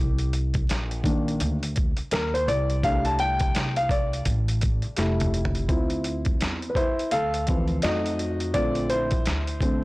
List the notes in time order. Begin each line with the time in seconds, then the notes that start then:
Already playing: C2 G4
0.19 closed hi-hat
0.33 closed hi-hat
0.54 kick, closed hi-hat
0.69 A#1, snare, closed hi-hat
0.91 closed hi-hat
1.04 D#3 A#3 D4, kick, closed hi-hat
1.28 closed hi-hat
1.40 D2, closed hi-hat
1.63 closed hi-hat
1.76 kick, closed hi-hat
1.97 muted upright bass stroke, closed hi-hat
2.11 D#2 A#4, snare, closed hi-hat
2.34 C5, closed hi-hat
2.48 C2 D5, closed hi-hat
2.70 closed hi-hat
2.83 G3 A3 D4 F5, kick, closed hi-hat
3.05 A5, closed hi-hat
3.19 G5, closed hi-hat
3.40 kick, closed hi-hat
3.55 C2, snare, closed hi-hat
3.76 F5, closed hi-hat
3.89 D5, kick, closed hi-hat
4.13 closed hi-hat
4.25 A1, kick, closed hi-hat
4.48 closed hi-hat
4.61 kick, closed hi-hat
4.82 muted upright bass stroke, closed hi-hat
4.97 F1 G3 A3 E4, snare, closed hi-hat
5.20 closed hi-hat, mid tom
5.34 closed hi-hat
5.45 floor tom
5.55 closed hi-hat
5.68 D2 C4 E4 F4, kick, closed hi-hat
5.90 closed hi-hat
6.04 closed hi-hat
6.25 kick, closed hi-hat
6.41 E2, snare, closed hi-hat
6.62 closed hi-hat
6.70 B4
6.75 E4 C5, kick, closed hi-hat
6.98 muted upright bass stroke, closed hi-hat
7.11 D2 A4 F5, closed hi-hat
7.34 closed hi-hat
7.47 E3 F3 C4, kick, closed hi-hat
7.68 closed hi-hat
7.82 F2 F#3 A3 D#4 F#4 D#5, snare, closed hi-hat
8.06 closed hi-hat
8.19 closed hi-hat
8.40 closed hi-hat
8.54 A#1 D3 A3 C4 F4 D5, kick, closed hi-hat
8.75 closed hi-hat
8.90 E4 C5, closed hi-hat
9.11 kick, closed hi-hat
9.26 D2, snare, closed hi-hat
9.47 closed hi-hat
9.61 D3 A3 C4, kick, closed hi-hat